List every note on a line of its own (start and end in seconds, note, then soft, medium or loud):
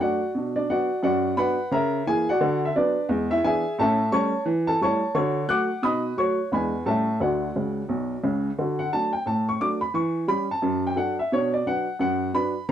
0.00 0.19 F#3 soft
0.00 0.19 A3 soft
0.00 0.19 D4 medium
0.00 0.33 F#4 medium
0.00 0.33 D5 medium
0.00 0.30 F#5 medium
0.35 0.64 B2 medium
0.35 0.55 D4 soft
0.56 0.68 D4 medium
0.56 0.67 D5 medium
0.69 0.88 F#3 soft
0.69 0.88 B3 soft
0.69 0.88 D4 soft
0.69 1.02 F#4 medium
0.69 1.02 D5 medium
0.69 0.98 F#5 medium
1.03 1.32 F#2 medium
1.03 1.36 F#4 medium
1.03 1.35 D5 medium
1.03 1.32 F#5 medium
1.37 1.56 F#3 medium
1.37 1.56 B3 soft
1.37 1.56 D4 medium
1.37 1.70 B4 medium
1.37 1.70 F#5 medium
1.37 1.66 B5 medium
1.71 2.00 C#3 medium
1.71 2.04 A#4 medium
1.71 2.04 E5 medium
1.71 2.01 A#5 medium
2.06 2.25 E3 soft
2.06 2.25 A#3 medium
2.06 2.26 E4 medium
2.06 2.28 G#4 medium
2.06 2.26 G#5 loud
2.29 2.62 F#4 medium
2.29 2.61 D5 medium
2.29 2.58 F#5 medium
2.41 2.69 D3 medium
2.65 2.74 E5 medium
2.75 2.94 F#3 soft
2.75 2.94 B3 medium
2.75 3.08 D4 medium
2.75 3.08 B4 medium
2.75 3.04 D5 medium
3.09 3.38 E2 medium
3.09 3.29 G#3 medium
3.31 3.43 E4 medium
3.31 3.41 E5 medium
3.44 3.62 E3 soft
3.44 3.62 B3 medium
3.44 3.63 D4 medium
3.44 3.76 G#4 medium
3.44 3.76 E5 medium
3.44 3.73 G#5 medium
3.78 4.07 A2 medium
3.78 3.98 C#4 medium
3.78 4.11 A4 medium
3.78 4.11 E5 medium
3.78 4.07 A5 medium
4.12 4.31 G3 medium
4.12 4.31 A3 medium
4.12 4.31 C#4 medium
4.12 4.44 C#5 medium
4.12 4.45 A5 medium
4.12 4.41 C#6 loud
4.46 4.75 E3 medium
4.67 4.80 A4 medium
4.67 4.78 A5 medium
4.81 5.00 G3 soft
4.81 5.00 A3 soft
4.81 5.00 E4 medium
4.81 5.14 C#5 medium
4.81 5.14 A5 medium
4.81 5.10 C#6 medium
5.15 5.44 D3 medium
5.15 5.35 F#4 soft
5.15 5.47 C#5 medium
5.15 5.44 C#6 medium
5.48 5.67 F#3 soft
5.48 5.67 A3 medium
5.48 5.67 F#4 medium
5.48 5.81 F#5 medium
5.48 5.81 D6 medium
5.48 5.78 F#6 loud
5.82 6.12 B2 medium
5.82 6.03 D#4 soft
5.82 6.16 D#5 medium
5.82 6.16 B5 medium
5.82 6.12 D#6 medium
6.17 6.36 F#3 soft
6.17 6.37 A3 soft
6.17 6.37 F#4 soft
6.17 6.50 C#5 medium
6.17 6.47 C#6 medium
6.52 6.81 E2 medium
6.52 6.71 E3 soft
6.52 6.72 G#3 soft
6.52 6.72 D4 soft
6.52 6.85 B4 medium
6.52 6.85 G#5 medium
6.52 6.81 B5 medium
6.86 7.15 A2 medium
6.86 7.05 G3 soft
6.86 7.05 A3 soft
6.86 7.06 C#4 soft
6.86 7.19 A4 medium
6.86 7.19 E5 medium
6.86 7.15 A5 medium
7.20 7.48 D2 medium
7.20 7.48 D3 medium
7.20 8.21 F#4 medium
7.20 8.20 D5 soft
7.20 8.08 F#5 medium
7.56 7.81 C#2 soft
7.56 7.81 C#3 soft
7.89 8.15 B1 medium
7.89 8.15 B2 medium
8.24 8.49 C#2 medium
8.24 8.49 C#3 medium
8.58 8.87 D3 medium
8.58 8.79 F#4 soft
8.79 8.90 F#5 medium
8.92 9.11 F#3 soft
8.92 9.11 A3 soft
8.92 9.12 D4 soft
8.92 9.10 A5 medium
9.13 9.24 G5 medium
9.26 9.55 A2 medium
9.26 9.44 A5 medium
9.49 9.59 C#6 medium
9.60 9.79 F#3 soft
9.60 9.79 A3 soft
9.60 9.80 D4 soft
9.60 9.79 D6 medium
9.81 9.92 B5 medium
9.94 10.23 E3 medium
9.94 10.24 C#6 medium
10.27 10.47 G3 soft
10.27 10.47 C#4 soft
10.27 10.47 G4 soft
10.27 10.48 B5 medium
10.51 10.81 A5 medium
10.62 10.92 F#2 medium
10.87 10.96 G5 medium
10.96 11.15 F#3 soft
10.96 11.16 D4 soft
10.96 11.15 A4 medium
10.96 11.15 F#5 medium
11.19 11.30 E5 medium
11.32 11.61 B2 medium
11.32 11.53 D4 soft
11.32 11.50 C#5 medium
11.54 11.64 D5 medium
11.66 11.85 F#3 soft
11.66 11.85 D4 soft
11.66 11.86 B4 soft
11.66 11.96 F#5 medium
11.99 12.29 F#2 medium
11.99 12.29 F#5 medium
12.34 12.53 F#3 soft
12.34 12.53 D4 medium
12.34 12.53 B4 medium
12.34 12.63 B5 medium